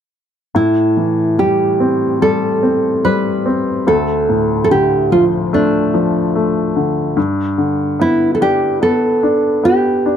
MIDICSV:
0, 0, Header, 1, 3, 480
1, 0, Start_track
1, 0, Key_signature, 0, "minor"
1, 0, Tempo, 833333
1, 314, Time_signature, 4, 2, 24, 8
1, 2711, Tempo, 823045
1, 5896, End_track
2, 0, Start_track
2, 0, Title_t, "Nylon-string guitar"
2, 0, Program_c, 0, 24
2, 322, Note_on_c, 0, 64, 53
2, 802, Note_on_c, 0, 67, 59
2, 816, Note_off_c, 0, 64, 0
2, 1277, Note_off_c, 0, 67, 0
2, 1280, Note_on_c, 0, 69, 56
2, 1752, Note_off_c, 0, 69, 0
2, 1755, Note_on_c, 0, 71, 64
2, 2231, Note_off_c, 0, 71, 0
2, 2233, Note_on_c, 0, 69, 57
2, 2668, Note_off_c, 0, 69, 0
2, 2675, Note_on_c, 0, 69, 42
2, 2713, Note_off_c, 0, 69, 0
2, 2715, Note_on_c, 0, 67, 59
2, 2937, Note_off_c, 0, 67, 0
2, 2953, Note_on_c, 0, 65, 58
2, 3018, Note_off_c, 0, 65, 0
2, 3199, Note_on_c, 0, 62, 47
2, 3890, Note_off_c, 0, 62, 0
2, 4640, Note_on_c, 0, 64, 60
2, 4831, Note_off_c, 0, 64, 0
2, 4834, Note_on_c, 0, 69, 47
2, 4872, Note_off_c, 0, 69, 0
2, 4876, Note_on_c, 0, 67, 68
2, 5111, Note_off_c, 0, 67, 0
2, 5114, Note_on_c, 0, 69, 58
2, 5592, Note_off_c, 0, 69, 0
2, 5594, Note_on_c, 0, 67, 66
2, 5896, Note_off_c, 0, 67, 0
2, 5896, End_track
3, 0, Start_track
3, 0, Title_t, "Grand piano"
3, 0, Program_c, 1, 0
3, 315, Note_on_c, 1, 45, 39
3, 413, Control_c, 1, 64, 127
3, 559, Note_on_c, 1, 52, 29
3, 798, Note_on_c, 1, 55, 35
3, 1038, Note_on_c, 1, 60, 35
3, 1269, Note_off_c, 1, 55, 0
3, 1277, Note_on_c, 1, 55, 37
3, 1494, Note_off_c, 1, 52, 0
3, 1506, Note_off_c, 1, 60, 0
3, 1514, Note_on_c, 1, 60, 33
3, 1745, Note_off_c, 1, 55, 0
3, 1754, Note_on_c, 1, 55, 36
3, 1983, Note_off_c, 1, 60, 0
3, 1992, Note_on_c, 1, 60, 38
3, 2211, Note_off_c, 1, 45, 0
3, 2219, Note_off_c, 1, 55, 0
3, 2225, Note_off_c, 1, 60, 0
3, 2229, Note_on_c, 1, 38, 42
3, 2240, Control_c, 1, 64, 0
3, 2331, Control_c, 1, 64, 127
3, 2470, Note_on_c, 1, 45, 30
3, 2709, Note_on_c, 1, 50, 36
3, 2950, Note_on_c, 1, 53, 30
3, 3191, Note_on_c, 1, 57, 42
3, 3408, Note_off_c, 1, 45, 0
3, 3421, Note_off_c, 1, 53, 0
3, 3430, Note_on_c, 1, 53, 37
3, 3648, Note_off_c, 1, 50, 0
3, 3663, Note_off_c, 1, 57, 0
3, 3672, Note_on_c, 1, 57, 38
3, 3909, Note_on_c, 1, 50, 38
3, 4123, Note_off_c, 1, 38, 0
3, 4126, Note_off_c, 1, 53, 0
3, 4135, Note_off_c, 1, 57, 0
3, 4141, Note_off_c, 1, 50, 0
3, 4145, Note_on_c, 1, 43, 45
3, 4156, Control_c, 1, 64, 0
3, 4274, Control_c, 1, 64, 127
3, 4386, Note_on_c, 1, 50, 34
3, 4629, Note_on_c, 1, 59, 39
3, 4872, Note_on_c, 1, 62, 34
3, 5101, Note_off_c, 1, 59, 0
3, 5110, Note_on_c, 1, 59, 42
3, 5326, Note_off_c, 1, 50, 0
3, 5341, Note_off_c, 1, 62, 0
3, 5350, Note_on_c, 1, 62, 37
3, 5577, Note_off_c, 1, 59, 0
3, 5585, Note_on_c, 1, 59, 38
3, 5823, Note_off_c, 1, 62, 0
3, 5832, Note_on_c, 1, 62, 37
3, 5896, Note_off_c, 1, 43, 0
3, 5896, Note_off_c, 1, 59, 0
3, 5896, Note_off_c, 1, 62, 0
3, 5896, End_track
0, 0, End_of_file